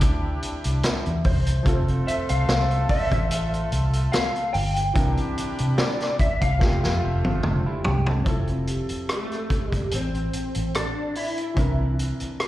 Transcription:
0.00 0.37 D2 medium
0.00 1.64 E3 medium
0.00 1.62 C4 medium
0.00 1.21 D4 medium
0.00 1.63 D4 medium
0.00 1.21 E4 medium
0.00 1.21 G4 medium
0.00 1.64 A#4 medium
0.00 kick loud
0.00 closed hi-hat medium
0.43 closed hi-hat medium
0.64 0.82 C2 medium
0.64 closed hi-hat medium
0.83 2.03 E5 medium
0.83 snare loud
0.83 closed hi-hat medium
1.06 1.23 E2 medium
1.06 closed hi-hat soft
1.24 1.61 C2 medium
1.24 2.10 C5 medium
1.24 kick medium
1.24 open hi-hat soft
1.47 closed hi-hat medium
1.63 2.02 F1 loud
1.63 4.90 F3 medium
1.63 4.50 A3 medium
1.63 4.91 C4 medium
1.63 4.50 F4 medium
1.63 4.92 F4 medium
1.63 4.50 A4 medium
1.63 kick loud
1.63 closed hi-hat medium
1.68 4.93 A4 medium
1.88 closed hi-hat soft
2.06 3.58 C5 medium
2.06 2.13 E5 medium
2.06 closed hi-hat medium
2.29 2.46 C2 medium
2.29 2.90 F5 medium
2.29 closed hi-hat soft
2.49 2.84 C2 medium
2.49 snare loud
2.49 closed hi-hat medium
2.71 closed hi-hat soft
2.89 4.10 E5 loud
2.89 kick medium
2.89 open hi-hat soft
3.12 3.64 A1 medium
3.12 kick medium
3.12 closed hi-hat medium
3.31 closed hi-hat medium
3.54 closed hi-hat soft
3.72 4.08 C2 medium
3.72 closed hi-hat medium
3.93 closed hi-hat medium
4.12 4.53 F5 loud
4.12 snare loud
4.12 closed hi-hat medium
4.36 closed hi-hat soft
4.53 4.90 G1 loud
4.53 5.78 G5 loud
4.53 open hi-hat medium
4.76 closed hi-hat medium
4.94 5.15 C2 loud
4.94 6.56 E3 medium
4.94 6.57 C4 medium
4.94 6.17 D4 medium
4.94 6.58 D4 medium
4.94 6.17 E4 medium
4.94 6.17 G4 medium
4.94 kick loud
4.94 closed hi-hat medium
4.98 6.59 A#4 medium
5.17 closed hi-hat soft
5.38 muted fingered electric bass stroke soft
5.38 closed hi-hat medium
5.58 5.76 C3 medium
5.58 closed hi-hat soft
5.78 6.17 D5 medium
5.78 snare loud
5.78 closed hi-hat medium
6.00 snare soft
6.00 closed hi-hat soft
6.19 6.41 E5 medium
6.19 muted fingered electric bass stroke soft
6.19 kick medium
6.19 closed hi-hat medium
6.41 6.58 C2 medium
6.41 7.80 F5 medium
6.41 kick medium
6.41 closed hi-hat medium
6.58 6.80 F1 loud
6.58 8.22 F3 medium
6.58 8.22 A3 medium
6.58 7.83 A3 medium
6.58 7.83 C4 medium
6.58 8.23 F4 medium
6.58 7.83 F4 medium
6.58 kick medium
6.58 snare medium
6.63 8.24 G4 medium
6.84 7.00 F2 medium
6.84 snare medium
7.04 7.22 F1 medium
7.25 7.42 G1 medium
7.25 high tom medium
7.43 7.63 F1 medium
7.43 7.65 F3 medium
7.43 7.65 D4 medium
7.43 8.63 A4 soft
7.43 mid tom medium
7.66 7.85 G3 medium
7.66 7.84 E4 medium
7.84 8.21 C2 medium
7.84 8.06 G4 medium
7.84 floor tom loud
8.06 8.47 C4 medium
8.06 8.47 A4 medium
8.06 floor tom medium
8.24 8.81 F1 medium
8.24 11.52 F3 medium
8.24 11.52 C4 medium
8.24 11.53 E4 medium
8.24 kick loud
8.24 closed hi-hat medium
8.29 11.54 A4 medium
8.47 closed hi-hat soft
8.67 10.19 G4 medium
8.67 closed hi-hat medium
8.89 muted fingered electric bass stroke soft
8.89 closed hi-hat soft
9.09 9.73 A3 medium
9.09 cross-stick loud
9.09 closed hi-hat medium
9.32 cross-stick soft
9.32 closed hi-hat soft
9.50 muted fingered electric bass stroke soft
9.50 kick medium
9.50 closed hi-hat medium
9.72 9.89 G1 medium
9.72 9.94 G3 medium
9.72 kick medium
9.72 closed hi-hat soft
9.91 10.28 A1 medium
9.91 10.78 C4 medium
9.91 closed hi-hat medium
10.15 closed hi-hat soft
10.33 closed hi-hat medium
10.55 10.72 A1 medium
10.55 closed hi-hat medium
10.74 11.16 D4 medium
10.74 cross-stick loud
10.74 closed hi-hat medium
11.15 11.95 E4 medium
11.15 open hi-hat soft
11.37 closed hi-hat medium
11.54 12.12 C2 medium
11.54 12.48 E3 medium
11.54 12.48 C4 medium
11.54 12.48 D4 medium
11.54 kick loud
11.54 closed hi-hat medium
11.59 12.48 A#4 medium
11.99 closed hi-hat medium
12.20 muted fingered electric bass stroke soft
12.20 closed hi-hat soft
12.40 cross-stick loud
12.40 closed hi-hat medium

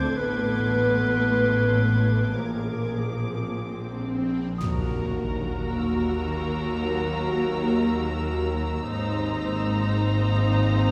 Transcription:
0.00 0.15 D2 medium
0.00 0.16 D2 medium
0.00 0.15 D3 medium
0.00 0.11 F3 medium
0.00 0.16 C4 medium
0.00 2.33 A4 medium
0.00 0.15 C5 medium
0.00 0.16 C5 medium
0.00 0.12 D6 medium
0.00 4.01 D6 soft
0.00 2.89 G#6 soft
0.15 2.36 A1 medium
0.15 2.33 A1 medium
0.15 2.33 A2 medium
0.15 2.33 A3 medium
0.15 2.33 B3 medium
0.15 2.32 B4 medium
0.15 2.38 B4 medium
0.15 2.33 C6 medium
0.15 swell medium
2.36 4.60 A#1 medium
2.36 4.40 A#1 soft
2.36 4.40 A#2 soft
2.36 4.36 F3 soft
2.36 3.49 A#3 soft
2.36 4.36 G#4 soft
2.36 3.49 A#4 medium
2.36 4.36 D6 soft
4.58 8.82 D#2 medium
4.58 8.83 D#2 medium
4.58 8.83 F#3 medium
4.58 8.82 A#3 medium
4.58 8.82 F#4 medium
4.58 8.83 A#4 medium
4.58 8.83 A#5 medium
4.58 10.91 A#5 soft
4.58 7.76 D#6 medium
4.58 impact medium
5.68 10.91 E6 soft
8.85 10.91 G#1 medium
8.85 10.91 G#1 loud
8.85 10.91 G#2 medium
8.85 10.91 A#3 medium
8.85 10.91 C4 medium
8.85 10.91 D#4 medium
8.85 10.91 C5 medium
8.85 10.91 A#5 medium

